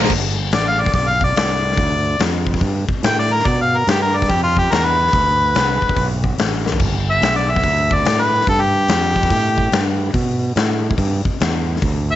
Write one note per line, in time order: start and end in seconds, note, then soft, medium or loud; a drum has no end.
0.00 0.10 A#2 medium
0.00 0.11 F3 medium
0.00 0.11 A#3 medium
0.04 snare medium
0.10 0.51 G1 medium
0.10 kick loud
0.10 crash loud
0.51 0.93 A1 medium
0.51 0.67 D5 medium
0.51 snare loud
0.51 open hi-hat medium
0.68 0.82 F5 medium
0.80 0.94 D5 medium
0.86 kick medium
0.86 snare soft
0.94 1.35 B1 medium
0.94 1.09 D5 medium
0.94 kick loud
0.94 open hi-hat soft
1.08 1.22 F5 medium
1.21 1.37 D5 medium
1.21 kick medium
1.36 1.77 C2 medium
1.36 2.18 D5 medium
1.36 snare loud
1.36 open hi-hat medium
1.72 snare soft
1.77 2.18 D2 medium
1.77 kick loud
1.77 open hi-hat medium
2.19 2.61 F2 medium
2.19 snare loud
2.19 open hi-hat medium
2.47 kick medium
2.54 kick medium
2.54 snare soft
2.61 2.87 G2 medium
2.61 kick medium
2.61 open hi-hat medium
2.88 muted fingered electric bass stroke soft
2.88 kick medium
3.03 3.44 A2 medium
3.03 3.18 G5 loud
3.03 snare loud
3.03 open hi-hat medium
3.19 3.34 D5 loud
3.32 3.49 A#4 loud
3.40 snare soft
3.45 3.86 B2 medium
3.45 3.60 D5 medium
3.45 kick loud
3.45 open hi-hat soft
3.61 3.79 F5 medium
3.77 3.89 A#4 medium
3.87 4.28 G2 medium
3.87 4.01 G4 medium
3.87 snare loud
3.87 open hi-hat medium
4.02 4.18 A#4 medium
4.17 4.32 D5 medium
4.22 kick medium
4.22 snare soft
4.29 4.70 F2 medium
4.29 4.43 G4 medium
4.29 kick loud
4.29 open hi-hat medium
4.43 4.57 F4 medium
4.57 4.73 G4 medium
4.57 kick medium
4.71 5.12 E2 medium
4.71 4.87 A#4 medium
4.71 snare medium
4.71 open hi-hat medium
4.85 6.07 B4 loud
5.07 snare soft
5.13 5.54 D2 medium
5.13 kick loud
5.13 open hi-hat medium
5.55 5.80 C2 medium
5.55 snare loud
5.55 open hi-hat medium
5.82 kick medium
5.89 kick medium
5.96 6.37 B1 medium
5.96 kick loud
5.96 open hi-hat medium
6.24 kick medium
6.38 6.79 A1 medium
6.38 snare loud
6.38 open hi-hat medium
6.66 snare medium
6.72 floor tom medium
6.79 7.21 G1 medium
6.79 kick loud
6.79 crash medium
7.10 7.35 E5 loud
7.22 7.62 B1 loud
7.22 snare loud
7.22 open hi-hat medium
7.36 7.52 D5 medium
7.50 7.95 E5 medium
7.56 kick loud
7.56 snare soft
7.63 8.04 D2 medium
7.63 kick medium
7.63 open hi-hat medium
7.91 8.22 D5 medium
7.91 kick medium
8.05 8.46 A2 medium
8.05 snare loud
8.05 open hi-hat medium
8.21 8.47 B4 medium
8.41 snare soft
8.47 8.88 G2 medium
8.47 8.63 A4 medium
8.47 kick loud
8.47 open hi-hat soft
8.61 9.83 G4 loud
8.88 9.30 F2 medium
8.88 snare loud
8.88 open hi-hat medium
9.16 kick medium
9.23 kick medium
9.23 snare soft
9.30 9.71 A2 medium
9.30 kick loud
9.30 open hi-hat medium
9.58 kick medium
9.72 10.13 G2 medium
9.72 snare loud
9.72 open hi-hat medium
10.14 10.55 B2 medium
10.14 kick loud
10.14 open hi-hat medium
10.56 10.97 A2 medium
10.56 snare loud
10.56 open hi-hat medium
10.91 kick medium
10.98 11.24 G2 medium
10.98 kick medium
10.98 open hi-hat medium
11.25 muted fingered electric bass stroke soft
11.25 kick medium
11.40 11.81 E2 medium
11.40 snare loud
11.40 open hi-hat medium
11.76 snare soft
11.82 12.15 D2 medium
11.82 kick loud
11.82 open hi-hat medium
12.11 12.15 E5 loud